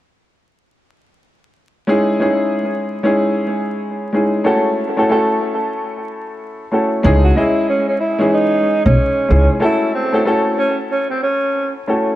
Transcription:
1.87 G#3 C#4 D#4 E4 G#4
2.20 G#3 C#4 D#4 E4 G#4
3.03 G#3 C#4 D#4 E4 G#4
4.12 G#3 C#4 D#4 E4 G#4
4.44 A3 C#4 E4 F#4 A4
4.97 A3 C#4 E4 F#4 A4
5.09 A3 C#4 E4 F#4 A4
6.72 A3 C#4 E4 F#4 A4
7.03 C#2 G#3 C#4 D#4 E4 G#4
7.24 F#4
7.35 G#3 C#4 E4 G#4 D#5
7.69 C#4
7.88 C#4
8.00 E4
8.19 E3 G#3 C#4 D#4 G#4
8.33 D#4
8.85 B1 C#4
9.28 C#2 G#3 C#4 D#4 E4 G#4
9.60 A3 C#4 E4 F#4 A4
9.94 C4
10.12 A3 C#4 E4 F#4 A4
10.25 A3 C#4 E4 F#4 A4
10.58 C#4
10.91 C#4
11.10 C4
11.23 C#4
11.87 A3 C#4 E4 F#4 A4

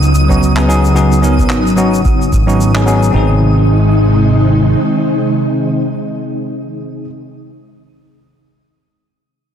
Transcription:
Already playing: C#2 C#3 F#3 B3 D#4 D#6
0.03 shaker
0.15 shaker
0.29 F#3 B3 C#4 D#4 F#4, kick, shaker
0.43 shaker
0.56 F#3 B3 C#4 D#4 G#4, clap, shaker
0.67 F#3 B3 C#4 D#4 G#4, shaker
0.85 shaker
0.95 F#3 B3 C#4 D#4 G#4, shaker
1.12 shaker
1.22 F#3 B3 C#4 D#4 A#4, shaker
1.39 kick, shaker
1.50 G#1, clap, shaker
1.67 shaker
1.76 F#3 B3 C#4 D#4 F#4, shaker
1.94 shaker
2.05 kick, shaker
2.22 shaker
2.32 G#1, kick, shaker
2.46 F#3 B3 C#4 D#4 F#4, shaker
2.61 shaker
2.74 F#3 B3 C#4 D#4 G#4, clap, shaker
2.86 F#3 B3 C#4 D#4 G#4, shaker
3.03 shaker
3.11 G#1 C3 D#3 G#3 C4 D#4
3.16 G#4

